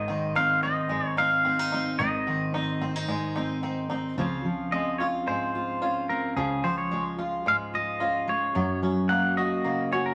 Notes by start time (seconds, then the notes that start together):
Already playing: G#1 G#2 D#3 G#3 D#5
0.08 D#3 C4
0.36 C4 D#4 F5
0.63 C4 D#4 D#5
0.89 G#2 G#3
1.07 C#5
1.17 C4 D#4 F5
1.45 C4
1.59 D#4
1.72 C4 D#4
1.99 G#1 G#2 D#3 D#5
2.27 D#3 C4
2.54 C4 D#4
2.81 C4
2.96 D#4
3.08 G#2 G#3
3.36 C4 D#4
3.63 C4 D#4
3.90 C4 D#4
4.17 C#2 C#3 F3 C4 C#4 F4
4.45 F3
4.72 G#3 C4 D#5
4.98 F4 C#5
5.27 G#2 G#3 C5
5.55 F4
5.82 C#4 F4
6.09 C4 A#4
6.36 C#2 C#3 F3 G#4
6.63 F3 C4 C5
6.78 C#5
6.91 G#3
7.19 F4
7.46 G#2 G#3 F5
7.74 F4 D#5
8.00 C#4 F4
8.28 G#3 C#5
8.55 F#2 F#3
8.82 F#3 C#4
9.09 A#3 F#5
9.37 F#4 D#5
9.65 C#3 A#3
9.92 C#4 F#4 C#5
10.06 A#4